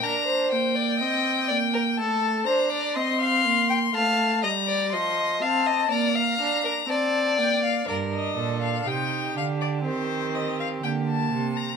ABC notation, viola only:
X:1
M:4/4
L:1/8
Q:1/4=61
K:Gphr
V:1 name="Viola"
D B, C B, =A, D C B, | =A, G, F, C B, D C B, | D2 E D C2 B,2 |]